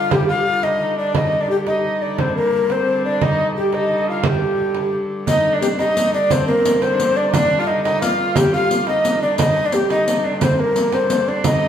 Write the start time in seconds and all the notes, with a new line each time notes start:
Already playing: G2 D3 F4 F5
0.11 G4, frame drum
0.28 F4 F5, frame drum
0.46 F4
0.63 D#4 D#5, frame drum
0.80 D#4, frame drum
0.98 D4 D5
1.15 G2 D3 D#4 D#5, frame drum
1.41 D4 D5
1.48 G4, frame drum
1.66 D#4 D#5, frame drum
1.84 frame drum
2.01 D5, frame drum
2.18 C4 C5, frame drum
2.35 A#3 A#4
2.53 frame drum
2.70 C4 C5, frame drum
2.87 frame drum
3.05 D4 D5, frame drum
3.21 D#4 D#5, frame drum
3.56 G4, frame drum
3.73 D#4 D#5, frame drum
3.89 D#4, frame drum
4.06 F4 F5, frame drum
4.24 G4, frame drum
4.58 frame drum
4.75 frame drum
4.92 frame drum
5.27 G2 D3 D#4 D#5, riq, frame drum
5.53 D4 D5
5.62 G4, riq, frame drum
5.79 D#4 D#5, riq, frame drum
5.97 D#4, riq, frame drum
6.14 D4 D5, frame drum
6.30 C4 C5, riq, frame drum
6.47 A#3 A#4
6.61 C4
6.65 riq, frame drum
6.72 A#3
6.82 C4 C5, riq, frame drum
6.93 D4
6.99 riq, frame drum
7.05 C4
7.16 D4 D5
7.28 D#4
7.34 D4 D5, riq, frame drum
7.59 F4 F5
7.67 D#4 D#5, frame drum
7.84 D#4 D#5, riq, frame drum
8.01 F4 F5, riq, frame drum
8.19 F4, frame drum
8.36 G4, riq, frame drum
8.53 F4 F5, riq
8.71 riq
8.87 D#4 D#5, frame drum
9.05 riq
9.22 D4 D5, frame drum
9.38 G2 D3 D#4 D#5, riq, frame drum
9.65 D4 D5
9.72 G4, riq, frame drum
9.90 D#4 D#5, riq, frame drum
10.07 D#4, riq, frame drum
10.24 D4 D5, frame drum
10.41 C4 C5, riq, frame drum
10.52 C5
10.59 A#3 A#4
10.76 A#3, riq
10.93 C4 C5, riq, frame drum
11.10 C4, riq, frame drum
11.27 D4 D5, frame drum
11.44 D#4 D#5, riq, frame drum